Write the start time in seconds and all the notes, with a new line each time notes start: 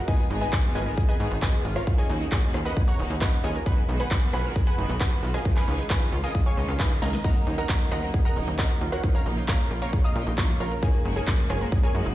0.08 D#3 G#3 B3 D#4 G#4 B4 D#5 G#5, kick, closed hi-hat
0.19 closed hi-hat
0.30 G#1 D#3 G#3 B3 D#4 G#4, open hi-hat
0.41 D#4 G#4 B4 D#5 G#5, closed hi-hat
0.53 F#4, kick, clap, closed hi-hat
0.64 D#3 G#3 B3 G#4, closed hi-hat
0.75 G#1 F4 G#4 B4 D#5 G#5, open hi-hat
0.86 D#3 G#3 B3 G#4 A#4, closed hi-hat
0.98 D#3 G#3 B3 G#4, kick, closed hi-hat
1.09 G#4 B4 D#5 G#5, closed hi-hat
1.20 G#2 D#3 G#3 B3 D#4 G#4, open hi-hat
1.31 G#1 D#4, closed hi-hat
1.42 D#3 G#3 B3 F#4 G#4 B4 D#5 G#5, kick, cross-stick, clap, closed hi-hat
1.53 D#3 G#3 B3 G#4, closed hi-hat
1.65 G#1 F4, open hi-hat
1.76 F4 A#4 C#5 F5, cross-stick, open hi-hat
1.87 D#3 A#3 C#4 D#4 F#4, kick, closed hi-hat
1.98 G#4 C#5 D#5 G#5, closed hi-hat
2.09 D#2 D#3 A#3 C#4 D#4 F#4, open hi-hat
2.21 D#4, closed hi-hat
2.32 F#4 G#4 C#5 D#5 G#5, kick, clap, closed hi-hat
2.43 D#3 A#3 C#4 F#4, closed hi-hat
2.54 D#2 F4, cross-stick, open hi-hat
2.65 D#3 A#3 C#4 F#4 A#4 B4 D#5 F#5 B5, closed hi-hat
2.77 D#3 A#3 C#4 F#4 G#4, kick, closed hi-hat
2.88 C#5 F#5 A#5 C#6, closed hi-hat
2.99 D#1 D#3 A#3 C#4 D#4 F#4, open hi-hat
3.10 D#2 D#4, closed hi-hat
3.21 D#3 A#3 C#4 F#4 B4 D#5 F#5 B5, kick, clap, closed hi-hat
3.33 D#3 A#3 C#4 F#4, closed hi-hat
3.44 D#2 F4 G#4 C#5 D#5 G#5, open hi-hat
3.55 A#4, open hi-hat
3.66 D#3 G#3 B3 D#4 F#4 B4 F#5 G#5 B5, kick, closed hi-hat
3.77 closed hi-hat
3.89 B1 D#3 G#3 B3 D#4 F#4, open hi-hat
4.00 D#4 B4 F#5 G#5 B5, closed hi-hat
4.11 F#4, kick, clap, closed hi-hat
4.22 D#3 G#3 B3 F#4, closed hi-hat
4.33 B1 F4 B4 F#5 G#5 B5, cross-stick, open hi-hat
4.45 D#3 G#3 B3 F#4 A#4, closed hi-hat
4.56 D#3 G#3 B3 F#4 G#4, kick, closed hi-hat
4.67 B4 F#5 G#5 B5, closed hi-hat
4.78 F#1 D#3 G#3 B3 D#4 F#4, open hi-hat
4.89 B1 D#4, closed hi-hat
5.00 D#3 G#3 B3 F#4 B4 F#5 G#5 B5, kick, cross-stick, clap, closed hi-hat
5.12 D#3 G#3 B3 F#4, closed hi-hat
5.23 B1 F4, open hi-hat
5.34 G#4 A#4 D#5 F5 G#5, cross-stick, open hi-hat
5.45 D#3 G#3 C#4 D#4 F4, kick, closed hi-hat
5.56 B4 F5 G#5 B5, clap, closed hi-hat
5.68 C#2 D#3 G#3 C#4 D#4 F4, open hi-hat
5.79 D#4, closed hi-hat
5.90 F4 B4 F5 G#5 B5, kick, clap, closed hi-hat
6.01 D#3 G#3 C#4 F4, closed hi-hat
6.12 C#2 F4, open hi-hat
6.24 D#3 G#3 C#4 F4 A#4 D#5 F5 G#5 D#6, closed hi-hat
6.35 D#3 G#3 C#4 F4 G#4, kick, closed hi-hat
6.46 C#5 F5 G#5 C#6, closed hi-hat
6.57 C#2 D#3 G#3 C#4 F4 D#5, open hi-hat
6.68 C#2 F4, cross-stick, closed hi-hat
6.80 D#3 G#3 C#4 D#4 F4 B4 F5 G#5 B5, kick, clap, closed hi-hat
6.91 D#3 G#3 C#4 F4 A#4, closed hi-hat
7.02 C#2 G#4 A#4 D#5 F5 A#5, snare, open hi-hat
7.13 D#5, snare, open hi-hat
7.24 C#3 F#3 A#3 D#4 A#4 D#5 F#5 A#5, kick, closed hi-hat, crash
7.36 closed hi-hat
7.47 D#2 C#3 F#3 A#3 D#4, open hi-hat
7.58 D#4 A#4 D#5 F#5 A#5, closed hi-hat
7.69 F#4, kick, clap, closed hi-hat
7.80 C#3 F#3 A#3 D#4, closed hi-hat
7.92 D#2 F4 A#4 D#5 F#5 A#5, cross-stick, open hi-hat
8.03 C#3 F#3 A#3 D#4 A#4, closed hi-hat
8.14 C#3 F#3 A#3 D#4 G#4, kick, closed hi-hat
8.25 A#4 D#5 F#5 A#5, closed hi-hat
8.36 D#1 C#3 F#3 A#3 D#4, open hi-hat
8.47 D#2 D#4, closed hi-hat
8.59 C#3 F#3 A#3 D#4 F#4 A#4 D#5 F#5 A#5, kick, cross-stick, clap, closed hi-hat
8.70 C#3 F#3 A#3 D#4, closed hi-hat
8.81 D#2 F4, open hi-hat
8.92 F#4 A#4 C#5 F#5, cross-stick, open hi-hat
9.04 C#3 F3 A#3 D#4 F4, kick, closed hi-hat
9.15 A#4 C#5 F5 A#5, closed hi-hat
9.26 A#1 C#3 F3 A#3 D#4 F4, open hi-hat
9.37 D#4, closed hi-hat
9.48 F4 A#4 C#5 F5 A#5, kick, clap, closed hi-hat
9.60 C#3 F3 A#3 F4, closed hi-hat
9.71 A#1 F4, open hi-hat
9.82 C#3 F3 A#3 F4 A#4 C#5 F5 A#5 C#6, closed hi-hat
9.93 C#3 F3 A#3 F4 G#4, kick, closed hi-hat
10.04 D#5 F5 A#5 D#6, closed hi-hat
10.15 A#2 C#3 F3 A#3 D#4 F4, open hi-hat
10.27 A#1 D#4, closed hi-hat
10.38 C#3 F3 A#3 F4 C#5 F5 A#5 C#6, kick, clap, closed hi-hat
10.49 C#3 F3 A#3 F4, closed hi-hat
10.60 A#1 F4 A#4 C#5 F5 A#5, open hi-hat
10.71 A#4, open hi-hat
10.83 C#3 G#3 A#3 D#4 F#4 G#4 A#4 C#5 G#5, kick, closed hi-hat
10.94 closed hi-hat
11.05 F#1 C#3 G#3 A#3 D#4 F#4, open hi-hat
11.16 D#4 G#4 A#4 C#5 G#5, closed hi-hat
11.27 F#4, kick, clap, closed hi-hat
11.39 C#3 G#3 A#3 F#4, closed hi-hat
11.50 F#1 F4 G#4 A#4 C#5 G#5, cross-stick, open hi-hat
11.61 C#3 G#3 A#3 F#4 A#4, closed hi-hat
11.72 C#3 G#3 A#3 F#4 G#4, kick, closed hi-hat
11.83 G#4 A#4 C#5 G#5, closed hi-hat
11.95 F#2 C#3 G#3 A#3 D#4 F#4, open hi-hat
12.06 F#1 D#4, closed hi-hat